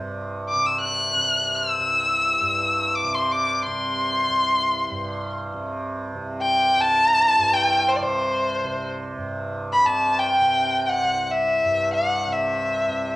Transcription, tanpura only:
Already playing: C2 G2 C3
0.56 C3
1.16 C3
1.79 C2
2.41 G2
3.03 C3
3.67 C3
4.28 C2
4.90 G2
5.53 C3
6.14 C3
6.76 C2
7.38 G2
8.00 C3
8.64 C3
9.17 G2
9.79 C3
10.40 C3
11.03 C2
11.64 G2
12.27 C3
12.88 C3

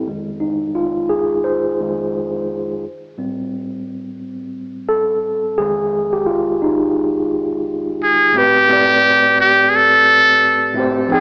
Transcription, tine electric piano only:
0.06 F2 D#3 G#3
0.40 D#4
0.75 F4
1.09 G#4
1.44 C5
1.80 F2 D#3 G#3
3.17 A2 G3 C4
4.89 A4
5.58 F2 D#3 G#3 G#4
6.13 G4
6.26 F4
6.62 D#4
8.32 A2 A3 C4
8.37 G4 B4
8.67 A2 A3 C4
8.71 G4 D5
10.74 A2 A3 C4
10.78 G4 C5
11.08 F3 C4 D#4
11.12 G#4 G5

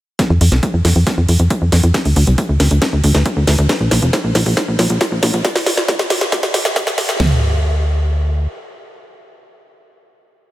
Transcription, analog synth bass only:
0.30 F2
0.41 F2
0.52 C2
0.74 F2
0.85 F2
0.96 F2
1.18 F2
1.29 F2
1.40 F2
1.61 F2
1.72 F2
1.83 F2
2.05 D2
2.16 D2
2.27 C2
2.49 D2
2.60 D2
2.71 D2
2.93 D2
3.04 D2
3.15 D2
3.36 D2
3.47 D2
3.58 D2
3.80 A#1
3.91 A#1
4.02 F1
4.24 A#1
4.35 A#1
4.46 A#1
4.68 A#1
4.79 A#1
4.90 A#1
5.12 A#1
5.23 A#1
5.34 A#1
7.20 D2

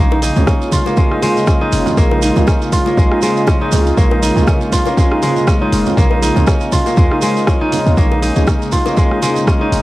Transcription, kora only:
Already playing: G#3 A#3 C#4 D#4 F4
0.12 D#4
0.22 D#4
0.47 C#4
0.72 F4
0.86 A#3
0.97 G#3
1.11 D#4
1.22 G#3
1.47 C#4
1.61 D#4
1.97 A#3
2.11 D#4
2.22 D#4
2.47 C#4
2.72 F4
2.87 A#3
2.98 G#3
3.11 D#4
3.23 G#3
3.48 C#4
3.61 D#4
3.97 A#3
4.11 D#4
4.22 D#4
4.48 C#4
4.72 F4
4.87 A#3
4.97 G#3
5.11 D#4
5.22 G#3
5.47 C#4
5.61 D#4
5.97 A#3
6.11 D#4
6.22 D#4
6.47 C#4
6.72 F4
6.86 A#3
6.97 G#3
7.11 D#4
7.22 G#3
7.47 C#4
7.61 D#4
7.97 A#3
8.11 D#4
8.22 D#4
8.47 C#4
8.72 F4
8.86 A#3
8.97 G#3
9.11 D#4
9.22 G#3
9.47 C#4
9.61 D#4

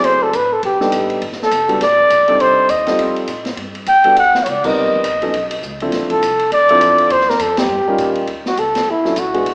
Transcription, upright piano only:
Already playing: F#3 A3 C4 E4 G#4
0.80 G3 B3 D4 D#4 A4
1.68 G3 B3 D4 F#4 A4
2.28 G3 C4 D4 D#4 A4
2.87 G3 C4 D#4 F4 A4
4.04 G3 B3 D4 F#4 A4
4.64 G3 B3 C4 D#4 A#4
5.22 F#3 B3 C#4 D#4 A4
5.82 F3 C4 D4 E4 A4
6.70 F3 C4 D4 E4 A4
7.87 G3 C#4 D#4 F4 A#4
9.05 F#3 C#4 D4 E4 A4
9.34 G#3 B3 D4 F#4 G#4

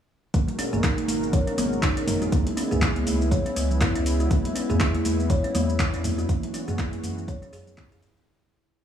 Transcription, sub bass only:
0.34 G#1
0.73 G#1
1.08 G#1
1.58 G#1
1.97 G#1
2.32 C#2
2.72 C#2
3.07 C#2
3.56 C#2
3.95 C#2
4.31 E2
4.70 E2
5.05 E2
5.55 E2
5.94 E2
6.29 F#2
6.68 F#2
7.03 F#2
7.53 F#2
7.92 F#2

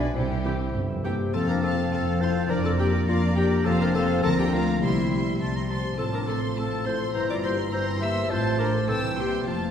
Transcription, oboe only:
0.45 G5
1.04 G5
1.34 A5
2.51 A#5
3.66 A5
4.24 A#5
4.82 C6
5.41 A5
5.56 A#5
5.69 A5
7.16 A#5
8.30 A5
8.89 G5
9.47 A5

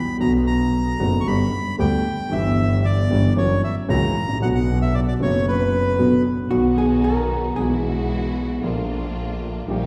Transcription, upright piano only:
0.18 B1 B2 D3 F#3 B3 F#4
0.99 F#1 F#2 D3 F#3 B3 F#4
1.27 G1 G2 D3 G3 B3 G4
1.78 D2 D3 G3 B3 G4
2.29 G1 G2 E3 G3 B3 G4
3.10 G1 G2 E3 G3 B3 G4
3.36 F#2 E3 F#3 A#3 C#4 F#4
3.88 C#2 C#3 E3 A#3 C#4 F#4
4.23 G#1
4.29 A1
4.34 A#1
4.40 B1 B2 D3 F#3 B3
4.44 F#4
5.19 F#1 F#2 D3 F#3 B3 F#4
5.99 B1 B2 D3 F#3 B3 F#4
6.50 B1 B2 D#3 F#3 B3
6.54 F#4
7.55 B1 B2 E3 G#3 B3
7.60 F#4
8.61 A#1 A#2 D3 F3 A#3
8.66 F4
9.66 A#1 A#2 D#3 G3 A#3
9.71 G4

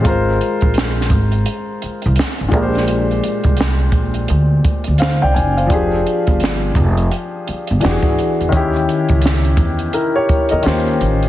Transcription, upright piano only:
0.02 G#3 F4
0.06 A#4 C5
2.49 A#2 G#3 D4
2.54 G4 A#4
2.62 C5
5.00 C5 F5
5.22 D5 G5
5.34 D5 G#5
5.57 C5 F5
5.66 F3 D4
5.71 G4 G#4
7.80 E3 D4 F#4 G4
7.91 G#4
8.49 D#3 C#4
8.54 E4 G4
9.94 E4 A#4
10.16 G4 C#5
10.51 A#4 D#5
10.62 D#3 C#4 F4 G4 C5

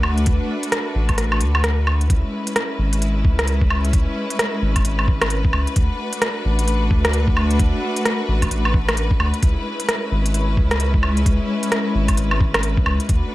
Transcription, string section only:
Already playing: A3 D4 F#4 B4
2.09 G#3 C#4 E4 B4
5.75 A3 D4 F#4
9.43 G#3 C#4 E4
13.09 A3 D4 F#4 B4

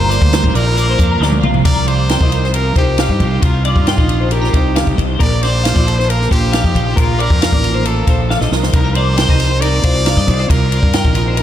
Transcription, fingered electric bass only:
Already playing: G1
0.21 D2
0.44 A1
0.54 A#1
0.99 F2
1.20 D2
1.42 C2
1.65 C2
2.21 C2
2.76 C2
3.09 G2
3.20 C2
3.42 C2
3.76 G2
3.98 A#1
4.54 C2
4.87 C2
4.98 C2
5.21 A#1
5.76 A#1
6.31 A#1
6.64 F2
6.75 A#1
6.97 A#1
7.30 F2
7.53 A1
8.07 A#1
8.41 A#1
8.51 C2
8.73 C2
9.29 C2
9.84 C2
10.17 G2
10.28 C2
10.50 C2
10.83 G2
11.05 A#1

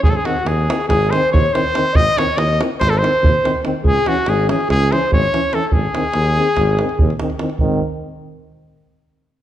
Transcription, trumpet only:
0.04 G#4
0.10 A4
0.16 G#4
0.26 F#4
0.47 G#4
0.88 G#4
1.11 C5
1.32 C#5
1.53 C5
1.96 D#5
2.18 C#5
2.38 D#5
2.80 C5
2.90 A4
2.98 C5
3.87 G#4
4.08 F#4
4.29 G#4
4.50 G#4
4.71 G#4
4.92 C5
5.13 C#5
5.55 A4
5.67 A4
5.73 G#4

